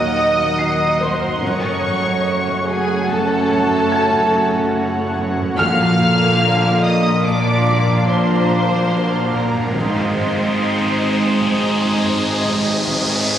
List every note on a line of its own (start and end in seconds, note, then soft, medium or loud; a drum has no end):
0.00 1.38 D#2 medium
0.00 1.38 A#2 soft
0.00 1.38 F#3 medium
0.00 1.37 A#3 medium
0.00 1.37 D#4 medium
0.00 1.38 D#4 medium
0.00 1.38 A#4 medium
0.00 1.00 D#5 medium
0.00 1.38 D#5 medium
0.00 1.38 F#5 medium
0.00 0.98 D#6 medium
0.37 taiko medium
0.59 3.04 C7 medium
1.00 1.42 C5 medium
1.00 1.42 C6 medium
1.00 taiko medium
1.21 taiko low-mid soft
1.41 5.54 F#1 medium
1.41 5.54 F#2 medium
1.41 5.39 C#3 medium
1.41 5.39 F#3 medium
1.41 5.54 A3 medium
1.41 5.40 A3 medium
1.41 5.54 C#4 medium
1.41 5.40 C#4 medium
1.41 5.58 F#4 medium
1.41 5.58 C#5 medium
1.41 2.66 C#5 medium
1.41 5.54 F#5 medium
1.41 2.67 C#6 medium
1.41 taiko medium
1.62 taiko low-mid soft
1.83 taiko low-mid medium
2.03 taiko medium
2.45 taiko medium
2.65 3.07 G#4 medium
2.65 3.09 G#5 medium
3.07 5.16 A4 medium
3.07 5.17 A5 loud
3.07 taiko medium
3.49 taiko medium
3.70 taiko low-mid soft
3.92 6.38 G#6 medium
4.12 taiko medium
4.54 taiko medium
5.16 taiko medium
5.37 taiko low-mid medium
5.56 9.71 A#1 medium
5.56 7.20 A#2 medium
5.56 9.70 A#2 medium
5.56 6.79 A#2 medium
5.56 7.20 D3 loud
5.56 7.21 D3 medium
5.56 7.20 F3 medium
5.56 7.21 A#3 medium
5.56 7.21 A#3 loud
5.56 9.75 A#4 medium
5.56 6.79 F5 medium
5.56 9.75 F5 medium
5.56 6.78 F6 loud
5.56 8.05 F6 medium
5.56 taiko loud
5.56 riser medium
5.79 taiko low-mid soft
6.00 taiko low-mid medium
6.20 taiko medium
6.62 taiko medium
6.83 7.25 D#5 medium
6.83 7.24 D#6 loud
7.24 9.71 A#2 medium
7.24 8.88 F3 medium
7.24 9.71 A#3 medium
7.24 9.71 D4 medium
7.24 8.08 D5 medium
7.24 8.06 D6 loud
7.24 taiko medium
7.66 taiko medium
7.87 taiko low-mid soft
8.08 9.33 C5 medium
8.08 9.30 C6 medium
8.28 taiko medium
8.70 taiko medium
8.93 9.76 F#3 medium
9.33 9.74 A#4 medium
9.33 9.75 A#5 medium
9.33 taiko medium
9.53 taiko low-mid soft
9.74 13.38 G#1 medium
9.74 13.38 G#2 soft
9.74 13.38 G#2 medium
9.74 13.38 G#3 medium
9.74 13.38 C4 medium
9.74 13.38 D#4 medium
9.74 13.38 D#4 soft
9.74 13.38 G#4 medium
9.74 13.09 C5 medium
9.74 13.38 D#5 medium
9.74 13.38 G#5 medium
9.74 13.08 C6 medium
9.74 taiko loud
9.95 taiko low-mid soft
10.16 taiko low-mid medium
10.37 taiko medium
10.78 taiko medium
11.41 taiko medium
11.82 taiko medium
12.03 taiko low-mid soft
12.45 taiko medium
12.87 taiko medium